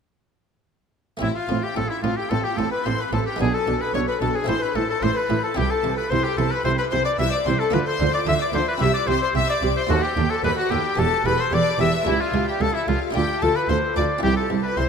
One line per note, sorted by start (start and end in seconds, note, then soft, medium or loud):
1.17 3.34 A3 medium
1.17 3.34 C4 medium
1.17 3.35 E4 medium
1.22 1.30 A1 medium
1.22 1.30 A2 medium
1.22 1.46 A2 medium
1.22 1.30 C4 medium
1.22 1.34 E4 medium
1.22 1.28 E4 medium
1.22 1.35 E5 medium
1.36 1.63 F4 medium
1.36 1.65 F4 medium
1.36 1.63 F5 medium
1.49 1.58 A1 medium
1.49 1.74 A2 medium
1.49 1.57 A2 medium
1.49 1.58 C4 medium
1.63 1.77 G4 medium
1.63 1.76 G4 medium
1.63 1.76 G5 medium
1.76 1.84 A1 medium
1.76 2.01 A2 medium
1.76 1.85 A2 medium
1.76 1.85 C4 medium
1.76 1.91 A4 medium
1.76 1.83 A4 medium
1.76 1.90 A5 loud
1.90 2.02 E4 medium
1.90 1.96 E4 medium
1.90 2.03 E5 medium
2.03 2.12 A1 medium
2.03 2.12 A2 medium
2.03 2.28 A2 medium
2.03 2.12 C4 medium
2.03 2.18 F4 medium
2.03 2.17 F4 medium
2.03 2.17 F5 medium
2.17 2.31 G4 medium
2.17 2.23 G4 medium
2.17 2.31 G5 medium
2.30 2.39 A1 medium
2.30 2.39 A2 medium
2.30 2.55 A2 medium
2.30 2.39 C4 medium
2.30 2.45 A4 medium
2.30 2.44 A4 loud
2.30 2.37 A5 loud
2.44 2.59 G4 medium
2.44 2.58 G4 medium
2.44 2.58 G5 medium
2.57 2.66 A1 medium
2.57 2.66 A2 medium
2.57 2.83 A2 medium
2.57 2.66 C4 medium
2.57 2.71 A4 medium
2.57 2.72 A4 medium
2.57 2.71 A5 loud
2.71 2.87 B4 medium
2.71 2.77 B4 medium
2.71 2.85 B5 loud
2.85 2.94 A1 medium
2.85 2.93 A2 medium
2.85 3.10 A2 medium
2.85 2.94 C4 medium
2.85 2.91 C5 medium
2.85 3.01 C5 medium
2.85 2.99 C6 loud
2.99 3.05 B4 medium
2.99 3.12 B4 medium
2.99 3.13 B5 medium
3.13 3.21 A1 medium
3.13 3.21 A2 medium
3.13 3.37 A2 medium
3.13 3.21 C4 medium
3.13 3.26 A4 medium
3.13 3.19 A5 loud
3.26 3.40 G4 medium
3.26 3.40 G5 medium
3.36 3.48 B2 medium
3.36 4.43 G#3 medium
3.36 4.44 B3 medium
3.36 4.45 D4 medium
3.36 3.53 G#4 medium
3.40 3.48 B1 medium
3.40 3.65 B2 medium
3.40 3.49 D4 medium
3.40 3.55 G#4 loud
3.40 3.46 G#5 loud
3.53 3.80 A4 medium
3.53 3.83 A4 medium
3.53 3.80 A5 loud
3.67 3.75 B1 medium
3.67 3.75 B2 medium
3.67 3.92 B2 medium
3.67 3.75 D4 medium
3.81 3.94 B4 medium
3.81 3.94 B5 medium
3.94 4.02 B1 medium
3.94 4.02 B2 medium
3.94 4.19 B2 medium
3.94 4.02 D4 medium
3.94 3.99 C#5 medium
3.94 4.08 C#5 medium
3.94 4.00 C#6 loud
4.08 4.13 B4 medium
4.08 4.21 B4 medium
4.08 4.21 B5 medium
4.21 4.30 B1 medium
4.21 4.29 B2 medium
4.21 4.46 B2 medium
4.21 4.29 D4 medium
4.21 4.34 A4 medium
4.21 4.37 A4 medium
4.21 4.34 A5 loud
4.35 4.48 G#4 medium
4.35 4.49 G#4 medium
4.35 4.48 G#5 medium
4.44 4.56 A1 medium
4.44 4.56 A2 medium
4.44 5.52 A3 medium
4.44 5.52 C4 medium
4.44 5.53 E4 medium
4.44 4.56 E4 medium
4.44 4.61 C5 loud
4.44 4.64 C5 loud
4.44 4.62 C6 loud
4.49 4.73 A2 medium
4.61 4.75 B4 medium
4.61 4.77 B4 medium
4.61 4.68 B5 medium
4.74 4.84 A1 medium
4.74 5.00 A2 medium
4.74 4.84 A2 medium
4.74 4.83 E4 medium
4.74 4.88 A4 medium
4.74 4.89 A4 medium
4.74 4.87 A5 loud
4.89 5.02 A4 medium
4.89 5.05 A4 medium
4.89 5.02 A5 loud
5.02 5.11 A1 medium
5.02 5.11 A2 medium
5.02 5.27 A2 medium
5.02 5.11 E4 medium
5.02 5.15 C5 medium
5.02 5.19 C5 medium
5.02 5.16 C6 loud
5.15 5.42 B4 medium
5.15 5.43 B4 medium
5.15 5.43 B5 loud
5.29 5.38 A1 medium
5.29 5.37 A2 medium
5.29 5.54 A2 medium
5.29 5.38 E4 medium
5.43 5.48 A4 medium
5.43 5.59 A4 medium
5.43 5.57 A5 medium
5.55 5.65 C2 loud
5.55 5.65 C3 medium
5.55 5.82 C3 medium
5.55 7.68 C4 medium
5.55 7.69 E4 medium
5.55 5.65 E4 medium
5.55 5.62 G4 loud
5.55 5.72 G4 medium
5.55 5.70 G5 loud
5.70 5.97 A4 medium
5.70 5.97 A5 loud
5.84 5.92 C2 medium
5.84 5.92 C3 medium
5.84 6.08 C3 medium
5.84 5.92 E4 medium
5.97 6.11 B4 medium
5.97 6.12 B4 medium
5.97 6.10 B5 loud
6.10 6.19 C2 medium
6.10 6.19 C3 medium
6.10 6.36 C3 medium
6.10 6.19 E4 medium
6.10 6.25 C5 loud
6.10 6.25 C5 medium
6.10 6.24 C6 loud
6.24 6.37 G4 medium
6.24 6.38 G4 medium
6.24 6.38 G5 loud
6.37 6.46 C2 medium
6.37 6.46 C3 medium
6.37 6.63 C3 medium
6.37 6.46 E4 medium
6.37 6.53 A4 medium
6.37 6.52 A4 medium
6.37 6.52 A5 loud
6.51 6.64 B4 medium
6.51 6.65 B4 medium
6.51 6.65 B5 loud
6.64 6.73 C2 medium
6.64 6.73 C3 medium
6.64 6.90 C3 medium
6.64 6.73 E4 medium
6.64 6.70 C5 loud
6.64 6.78 C5 loud
6.64 6.71 C6 loud
6.78 6.92 B4 medium
6.78 6.85 B4 medium
6.78 6.84 B5 loud
6.90 7.00 C2 medium
6.90 7.00 C3 medium
6.90 7.17 C3 medium
6.90 7.00 E4 medium
6.90 7.05 C5 loud
6.90 6.96 C6 loud
7.05 7.11 D5 medium
7.05 7.18 D5 medium
7.05 7.10 D6 loud
7.19 7.27 C2 medium
7.19 7.27 C3 medium
7.19 7.44 C3 medium
7.19 7.27 E4 medium
7.19 7.25 E5 loud
7.19 7.32 E5 loud
7.19 7.32 E6 loud
7.33 7.46 D5 medium
7.33 7.39 D5 medium
7.33 7.46 D6 loud
7.46 7.54 C2 medium
7.46 7.54 C3 medium
7.46 7.71 C3 medium
7.46 7.54 E4 medium
7.46 7.60 C5 medium
7.46 7.61 C5 medium
7.46 7.52 C6 loud
7.60 7.76 A4 medium
7.60 7.73 A4 medium
7.60 7.65 A5 loud
7.70 7.81 D2 medium
7.70 7.81 D3 medium
7.70 7.98 D3 medium
7.70 8.76 B3 medium
7.70 8.77 F4 medium
7.70 7.81 F4 medium
7.70 7.79 B4 medium
7.70 7.87 B4 loud
7.70 7.78 B5 loud
7.86 8.13 C5 loud
7.86 8.13 C5 medium
7.86 8.13 C6 loud
8.00 8.08 D2 medium
8.00 8.08 D3 medium
8.00 8.24 D3 medium
8.00 8.08 F4 medium
8.14 8.19 D5 medium
8.14 8.20 D5 loud
8.14 8.27 D6 loud
8.26 8.35 D2 medium
8.26 8.34 D3 medium
8.26 8.51 D3 medium
8.26 8.35 F4 medium
8.26 8.40 E5 loud
8.26 8.34 E5 loud
8.26 8.40 E6 loud
8.40 8.54 D5 medium
8.40 8.48 D5 medium
8.40 8.54 D6 loud
8.53 8.62 D2 medium
8.53 8.61 D3 medium
8.53 8.78 D3 medium
8.53 8.62 F4 medium
8.53 8.67 C5 medium
8.53 8.68 C5 medium
8.53 8.67 C6 loud
8.68 8.81 B4 medium
8.68 8.74 B4 loud
8.68 8.82 B5 loud
8.78 8.89 C2 medium
8.78 9.05 C3 medium
8.78 8.89 C3 loud
8.78 9.85 C4 medium
8.78 9.86 E4 medium
8.78 8.89 G4 medium
8.78 8.93 E5 loud
8.78 8.95 E5 loud
8.82 8.95 E6 loud
8.94 9.09 D5 loud
8.94 9.08 D5 medium
8.94 9.09 D6 loud
9.07 9.16 C2 medium
9.07 9.16 C3 medium
9.07 9.32 C3 medium
9.07 9.16 G4 medium
9.07 9.21 C5 loud
9.07 9.22 C6 loud
9.22 9.35 C5 loud
9.22 9.28 C5 medium
9.22 9.28 C6 loud
9.35 9.43 C2 medium
9.35 9.43 C3 medium
9.35 9.60 C3 medium
9.35 9.43 G4 medium
9.35 9.49 E5 loud
9.35 9.49 E6 loud
9.50 9.77 D5 loud
9.50 9.62 D5 medium
9.50 9.77 D6 loud
9.62 9.70 C2 medium
9.62 9.70 C3 medium
9.62 9.87 C3 medium
9.62 9.71 G4 medium
9.77 9.83 C5 medium
9.77 9.90 C5 loud
9.77 9.90 C6 loud
9.87 9.97 D#2 loud
9.87 10.14 D#2 medium
9.87 10.93 B3 medium
9.87 10.04 F#4 loud
9.87 10.94 A4 medium
9.87 9.98 A4 medium
9.91 10.04 F#5 loud
10.03 10.31 G4 medium
10.03 10.12 G4 medium
10.03 10.31 G5 loud
10.17 10.25 D#2 medium
10.17 10.41 D#2 medium
10.17 10.25 A4 medium
10.30 10.44 A4 medium
10.30 10.45 A5 loud
10.43 10.51 D#2 medium
10.43 10.52 D#2 medium
10.43 10.69 D#2 medium
10.43 10.52 A4 medium
10.43 10.57 B4 loud
10.43 10.50 B4 loud
10.43 10.58 B5 loud
10.57 10.71 F#4 medium
10.57 10.73 F#4 medium
10.57 10.71 F#5 loud
10.70 10.78 D#2 medium
10.70 10.79 D#2 medium
10.70 10.96 D#2 medium
10.70 10.98 G4 medium
10.70 11.00 G4 medium
10.70 10.79 A4 medium
10.70 10.99 G5 loud
10.96 11.06 E1 medium
10.96 11.06 E2 medium
10.96 11.23 E2 medium
10.96 12.02 B3 medium
10.96 12.03 G4 medium
10.96 11.06 G4 medium
10.96 11.25 A4 loud
10.96 11.28 A4 loud
10.96 11.25 A5 loud
11.25 11.33 E1 medium
11.25 11.33 E2 medium
11.25 11.50 E2 medium
11.25 11.33 G4 medium
11.25 11.39 B4 medium
11.25 11.42 B4 loud
11.25 11.39 B5 loud
11.39 11.45 C5 loud
11.39 11.55 C5 loud
11.39 11.53 C6 loud
11.52 11.60 E1 medium
11.52 11.60 E2 medium
11.52 11.77 E2 medium
11.52 11.60 G4 medium
11.52 11.79 D5 loud
11.52 11.80 D5 medium
11.52 11.80 D6 loud
11.79 11.87 E1 medium
11.79 11.87 E2 medium
11.79 12.04 E2 medium
11.79 11.87 G4 medium
11.79 12.06 E5 loud
11.79 11.93 E5 loud
11.79 12.07 E6 loud
12.04 12.14 C#2 loud
12.04 12.14 C#2 medium
12.04 12.31 C#2 medium
12.04 13.10 A3 medium
12.04 13.11 E4 medium
12.04 12.20 E4 loud
12.04 12.15 G4 medium
12.08 12.23 E4 loud
12.08 12.21 E5 loud
12.20 12.47 F4 medium
12.20 12.48 F4 medium
12.20 12.48 F5 loud
12.33 12.41 C#2 medium
12.33 12.58 C#2 medium
12.33 12.42 G4 medium
12.47 12.60 G4 medium
12.47 12.63 G4 medium
12.47 12.53 G5 loud
12.60 12.68 C#2 medium
12.60 12.69 C#2 medium
12.60 12.85 C#2 medium
12.60 12.69 G4 medium
12.60 12.74 A4 medium
12.60 12.76 A4 loud
12.60 12.74 A5 loud
12.74 12.88 E4 medium
12.74 12.88 E5 medium
12.87 12.95 C#2 medium
12.87 13.12 C#2 medium
12.87 12.96 C#2 medium
12.87 13.15 F4 medium
12.87 13.00 F4 medium
12.87 12.96 G4 medium
12.87 13.14 F5 loud
13.11 13.23 D2 medium
13.11 14.18 A3 medium
13.11 14.19 D4 medium
13.11 14.20 F4 medium
13.11 13.22 G4 loud
13.11 13.41 G5 loud
13.15 13.39 D2 medium
13.15 13.23 D2 medium
13.15 13.23 F4 medium
13.15 13.44 G4 medium
13.40 13.50 D2 medium
13.40 13.67 D2 medium
13.40 13.50 F4 medium
13.40 13.55 A4 loud
13.40 13.58 A4 medium
13.40 13.54 A5 loud
13.56 13.71 B4 loud
13.56 13.70 B4 medium
13.56 13.61 B5 loud
13.68 13.77 D2 medium
13.68 13.94 D2 medium
13.68 13.77 F4 medium
13.68 13.95 C5 medium
13.68 13.78 C5 medium
13.68 13.76 C6 loud
13.96 14.04 D2 medium
13.96 14.21 D2 medium
13.96 14.04 D2 medium
13.96 14.05 F4 medium
13.96 14.22 D5 medium
13.96 14.05 D5 medium
13.96 14.04 D6 loud
14.19 14.89 C4 medium
14.19 14.89 E4 medium
14.23 14.48 C2 medium
14.23 14.31 C2 medium
14.23 14.32 E4 medium
14.23 14.36 G4 loud
14.23 14.37 G4 loud
14.23 14.37 G5 loud
14.37 14.49 A4 medium
14.37 14.64 A4 medium
14.37 14.65 A5 medium
14.50 14.58 C2 medium
14.50 14.75 C2 medium
14.50 14.60 E4 medium
14.63 14.79 B4 medium
14.63 14.77 B4 medium
14.63 14.79 B5 medium
14.77 14.85 C2 medium
14.77 14.89 C2 medium
14.77 14.86 C2 medium
14.77 14.86 E4 medium
14.77 14.89 C5 loud
14.77 14.89 C5 medium
14.77 14.83 C6 loud